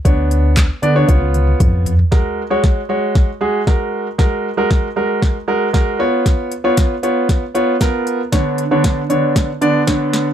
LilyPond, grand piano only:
\new Staff \with { instrumentName = "Grand piano" } { \time 4/4 \key fis \major \tempo 4 = 116 <b d' cis''>4~ <b d' cis''>16 r16 <b d' d''>16 <b d' cis''>16 <b eis' cis''>4. r8 | <gis fis' ais'>8 r16 <gis fis' cis''>8 r16 <gis fis' cis''>8. r16 <gis fis' gis'>8 <gis fis' ais'>8. r16 | <gis fis' ais'>8 r16 <gis fis' ais'>8 r16 <gis fis' ais'>8. r16 <gis fis' ais'>8 <gis fis' ais'>8 <b eis' cis''>8~ | <b eis' cis''>8 r16 <b eis' cis''>8 r16 <b eis' cis''>8. r16 <b eis' cis''>8 <b eis' ais'>8. r16 |
<d b d' cis''>8 r16 <d b d' cis''>8 r16 <d b d' cis''>8. r16 <d b d' d''>8 <d b d' cis''>8. r16 | }